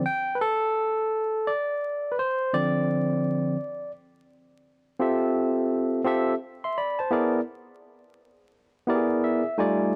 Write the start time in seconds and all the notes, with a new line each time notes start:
0.06 G5
0.35 B4
0.41 A4
1.47 D5
2.12 B4
2.19 C5
2.53 D3 F3 C4 D5
5.00 C4 F4 G4 A4 E5
6.04 C4 F4 G4 A4 E5
6.64 E5 C6
6.78 D5 B5
6.99 C5 A5
7.11 B3 E4 G#4 A#4 D5
8.87 B3 E4 G4 A#4 D5
8.95 G#4
9.24 E5
9.58 G3 A3 D#4 F4 D5 G#5